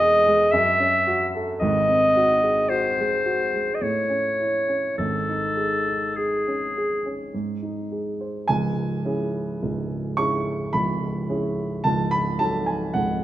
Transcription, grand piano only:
Already playing: E1 E2 G#3 C#4
0.00 G#4
0.27 G#3
0.53 F#2
0.80 C#4
1.07 F#4
1.35 A4
1.61 G#1 G#2
1.89 C4
2.16 F#4
2.43 G#4
2.70 F#4
2.99 G#3
3.26 F#4
3.54 G#3
3.81 A2
4.10 C#4
4.39 E4
4.69 C#4
4.98 G#1 G#2
5.29 D#4
5.57 G#4
5.87 D#4
6.18 G#4
6.47 C#4
6.77 G#4
7.06 C#4
7.34 G#2
7.62 D#4
7.92 G#4
8.21 C5
8.48 C#1 C#2 G#5
9.05 C#4 E4 G#4
9.62 C#1 C#2
10.17 C#4 E4 G#4 C#6
10.73 C#1 C#2 B5
11.29 C#4 E4 G#4
11.84 C#1 C#2 A5
12.11 B5
12.39 F#3 D#4 A4 A5
12.66 G#5
12.94 C#1 C#2 F#5

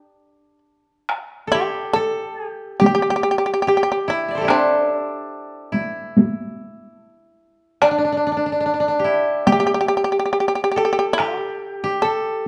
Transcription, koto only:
Already playing: D4
1.47 A4
1.54 G4
1.96 A4
2.48 G4
2.81 G4
3.67 G4
4.08 E4
4.28 D5 E5
4.35 A4 C5
4.41 E4 G4
4.48 D4
5.72 E4
7.82 D4
7.91 D4
7.98 D4
8.04 D4
8.12 D4
8.17 D4
8.27 D4
8.32 D4
8.37 D4
8.46 D4
8.52 D4
8.60 D4
8.66 D4
8.74 D4
8.80 D4
8.88 D4
8.99 G4
9.04 E4
9.47 G4
10.76 A4
11.20 G4
11.84 G4
12.04 A4

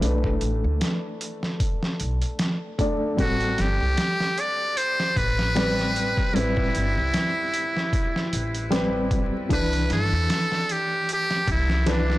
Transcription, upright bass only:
0.02 B1
0.42 A1
0.64 D2
2.01 B1
3.19 A1
3.59 G1
3.81 C2
5.17 A1
6.35 A1
6.76 G1
6.98 C2
8.33 A1
9.51 C2
9.90 G1
10.13 E2
11.48 C2

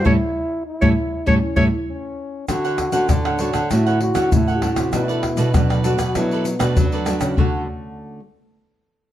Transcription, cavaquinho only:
0.05 A4 C#5 E5
0.82 A4 C#5 E5
1.27 A4 C#5 E5
1.57 A4 C#5 E5
2.49 D4 A4 C#5 F#5
2.65 A4 C#5 F#5
2.78 muted cavaquinho stroke
2.93 A4 C#5 F#5
3.10 D4 A4 C#5 F#5
3.25 A4 C#5 F#5
3.39 D4 A4 C#5 F#5
3.53 A4 C#5 F#5
3.70 D4 A4 C#5 F#5
3.86 A4 C#5 F#5
4.00 muted cavaquinho stroke
4.15 A4 C#5 F#5
4.48 A4 C#5 F#5
4.62 D4 A4 C#5 F#5
4.93 D4 A4 B4 D5
5.08 A4 B4 D5
5.23 muted cavaquinho stroke
5.37 A4 B4 D5
5.54 D4 A4 B4 D5
5.70 A4 B4 D5
5.84 D4 A4 B4 D5
5.98 A4 B4 D5
6.16 D4 A4 B4 D5
6.32 A4 B4 D5
6.59 A4 B4 D5
6.93 A4 B4 D5
7.06 D4 A4 B4 D5
7.37 D4 A4 C#5 F#5

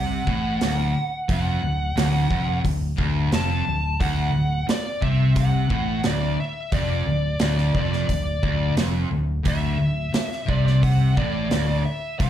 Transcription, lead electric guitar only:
Already playing: F#5
1.32 F#5
3.35 A5
4.01 F#5
4.70 D5
5.03 E5
5.36 F#5
6.06 D5
6.40 E5
6.73 D5
7.41 D5
7.75 D5
8.08 D5
9.48 E5
10.49 D5
10.66 D5
10.84 F#5
11.17 D5
11.85 E5
12.19 F#5

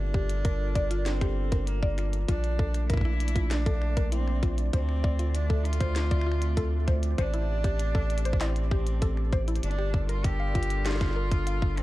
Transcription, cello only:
Already playing: D4
1.06 C4
1.67 A#3
2.29 D4
2.90 E4
3.51 D4
4.12 C4
4.73 C4
5.35 D4
5.65 F4
7.18 D4
8.41 C4
8.71 C4
9.63 D4
10.09 F4
10.24 G4
10.86 F4
11.77 C4

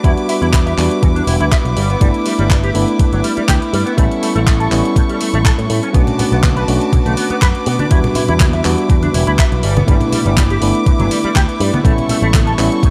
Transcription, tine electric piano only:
0.03 G3 B3 D4 F#4
0.78 G3 B3 D4 F#4
2.00 A3 B3 D4 E4
2.74 A3 B3 D4 E4
3.97 G3 B3 C#4 E4
4.71 G3 B3 C#4 E4
5.93 A3 C#4 D4 F#4
6.68 A3 C#4 D4 F#4
7.90 G3 B3 D4 F#4
8.64 G3 B3 D4 F#4
9.87 A3 B3 D4 E4
10.61 A3 B3 D4 E4
11.84 G3 B3 C#4 E4
12.58 G3 B3 C#4 E4

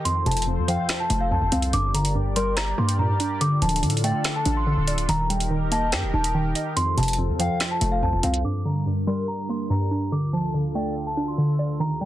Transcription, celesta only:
0.05 C6
0.26 A5
0.69 G5
1.00 A5
1.20 F5
1.32 A5
1.52 F5
1.73 D6
1.94 A#5
2.36 C6
2.57 A#5
2.78 C6
2.99 A#5
3.41 D6
3.62 A5
4.04 G5
4.36 A5
4.57 C6
5.09 A#5
5.30 G5
5.72 A5
5.92 G5
6.14 A5
6.34 G5
6.76 C6
6.98 A5
7.40 G5
7.71 A5
7.92 F5
8.03 A5
8.24 F5
8.45 D6
8.65 A#5
9.07 C6
9.28 A#5
9.50 C6
9.70 A#5
10.12 D6
10.33 A5
10.75 G5
11.07 A5
11.28 C6
11.80 A#5
12.01 G5

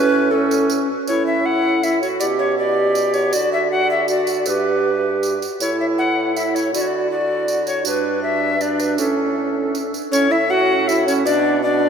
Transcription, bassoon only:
Already playing: A2
1.08 A2
2.22 B2
3.34 D3
4.48 G2
5.60 A2
6.74 D3
7.86 G2
8.99 A2
10.13 A2
11.26 B2

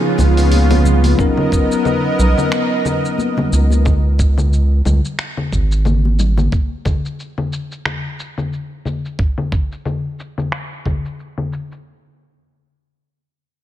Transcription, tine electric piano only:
Already playing: F3 B3 C#4 D#4 G#4
1.17 F#3 B3 C#4 D#4 A#4

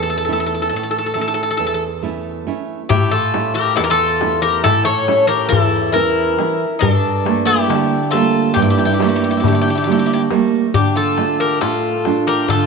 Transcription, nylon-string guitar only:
Already playing: E2 A3 C#4 E4
0.28 A3 C#4 E4
0.72 A2
1.15 A3 C#4 E4
1.59 E2
2.03 A3 C#4 E4
2.47 A3 C#4 E4
2.91 A2
3.34 A3 C#4 E4
3.78 E2
4.22 A3 C#4 E4
4.65 A2
5.08 A3 C#4 E4
5.51 E2
5.95 E3 C#4 E4
6.39 C#4 E4
6.82 G2
7.25 G3 A3 A#3
7.69 D3
8.13 G3 A3 A#3
8.57 G2
8.99 G3 A3 A#3
9.43 D3
9.87 G3 A3 A#3
10.31 G3 A3 A#3
10.75 D3
11.18 A3 D4 F4
11.62 A2
12.06 A3 D4 F4
12.49 D3

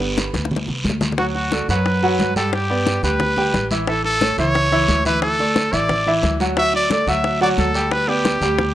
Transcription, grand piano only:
Already playing: D3 G3 B3 B4
1.18 F#3 F#4 F#5
1.53 A3 A4 D5
1.70 F#3 F#4 F#5
2.03 F#3 F#4 F#5
2.36 G3 G4 G5
2.70 B3 B4 D5
3.04 G3 G4 G5
3.38 G3 G4 G5
3.71 E3 E4 E5
3.88 E3 E4 E5
4.21 A3 A4 C#5
4.38 E3 E4 E5
4.72 E3 E4 E5
5.05 E3 E4 E5
5.40 A3 A4 D5
5.73 E3 E4 E5
6.07 E3 E4 E5
6.40 F#3 F#4 F#5
6.57 F#3 F#4 F#5
6.91 A3 A4 D5
7.08 F#3 F#4 F#5
7.41 F#3 F#4 F#5
7.75 G3 G4 G5
8.08 B3 B4 D5
8.42 G3 G4 G5

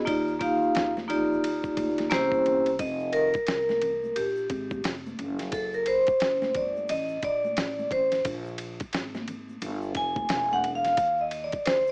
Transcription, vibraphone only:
0.05 A#3 D#4 F4 G4 D5
0.39 A#3 D#4 F4 G4 F5
1.08 A#3 D#4 F4 G4 D5
2.10 A#3 C#4 E4 G4 C5
2.80 D#5
3.13 A#4
4.16 G4
5.53 A4
5.74 A#4
5.87 C5
6.56 D5
6.90 D#5
7.24 D5
7.92 C5
9.97 G#5
10.53 F#5
10.75 F5
11.21 D#5
11.44 D5
11.66 C5

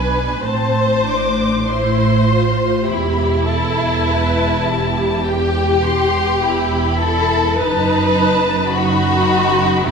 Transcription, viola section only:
Already playing: D4
0.44 C4
1.05 D4
1.69 E4
2.29 F4
2.86 G4
3.46 A4
4.08 B4
4.67 G4
6.43 E4
7.58 D#4
8.71 D#4
9.86 E4

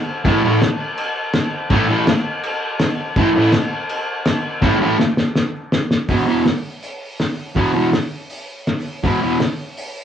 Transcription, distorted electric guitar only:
0.25 A2 E3 A3
0.43 A2 E3 A3
1.70 A2 E3 A3
1.88 A2 E3 A3
3.18 A2 E3 A3
3.35 A2 E3 A3
4.62 A2 E3 A3
4.81 A2 E3 A3
6.09 E2 B2 E3
6.28 E2 B2 E3
7.56 E2 B2 E3
7.74 E2 B2 E3
9.04 E2 B2 E3
9.22 E2 B2 E3

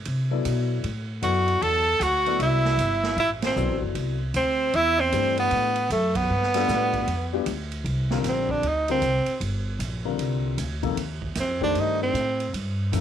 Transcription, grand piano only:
0.31 F#3 B3 E4 A4 D5
1.22 F#3 B3 E4 A4 D5
2.26 F#3 B3 E4 A4 D5
3.56 F#3 B3 E4 A4 D5
5.12 E3 A3 D4 G4 B4
6.54 G3 B3 D4 F4 A4
7.33 G3 B3 D4 F4 G4
8.10 D3 G3 C4 F4 A#4
8.89 D3 G3 C4 F4 A#4
10.05 D3 G3 C4 F4 A#4
10.83 C3 F3 A#3 D#4 A4
11.61 D#3 A3 D4 G4 C5
12.93 C3 F3 A#3 D#4 A4

